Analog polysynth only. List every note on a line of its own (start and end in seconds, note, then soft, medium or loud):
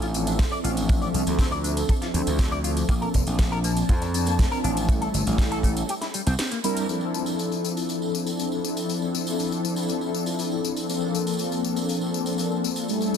0.00 0.11 F3 medium
0.00 0.11 C4 medium
0.00 0.11 D4 medium
0.00 0.11 E4 medium
0.00 0.12 A4 medium
0.13 0.86 F3 medium
0.13 0.86 C4 medium
0.13 0.86 D4 medium
0.13 0.87 A4 loud
0.13 0.86 E5 medium
0.89 1.24 F3 medium
0.89 1.24 E5 medium
1.26 2.11 F3 medium
1.26 2.11 C4 medium
1.26 2.11 D4 medium
1.26 2.12 A4 medium
1.26 2.12 E5 medium
2.13 2.86 F3 medium
2.13 2.86 C4 medium
2.13 2.86 D4 medium
2.13 2.87 A4 loud
2.13 2.86 E5 medium
3.26 4.11 F3 medium
3.26 4.11 C4 medium
3.26 4.11 D4 medium
3.26 4.12 A5 medium
4.13 4.86 F3 medium
4.13 4.86 C4 medium
4.13 4.86 D4 medium
4.13 4.87 A5 loud
4.89 5.23 G3 medium
4.89 5.24 A3 medium
4.89 5.24 C#4 medium
4.89 5.24 E4 medium
4.89 5.24 A4 medium
5.26 5.87 G3 medium
5.26 5.87 A3 medium
5.26 5.88 C#4 medium
5.26 5.88 E4 medium
5.26 5.88 A4 medium
6.63 6.86 G3 medium
6.63 6.86 C4 medium
6.63 6.86 D4 medium
6.63 6.86 E4 medium
6.63 6.86 A#4 loud
6.88 10.86 F3 medium
6.88 10.86 C4 medium
6.88 10.86 D4 medium
6.88 10.86 E4 medium
6.88 10.87 A4 medium
10.88 12.86 F3 medium
10.88 12.86 A#3 medium
10.88 12.86 C4 medium
10.88 12.86 D4 medium
10.88 12.87 A4 medium
12.88 13.17 G3 medium
12.88 13.17 A3 medium
12.88 13.17 C#4 medium
12.88 13.17 E4 medium
12.88 13.17 A4 medium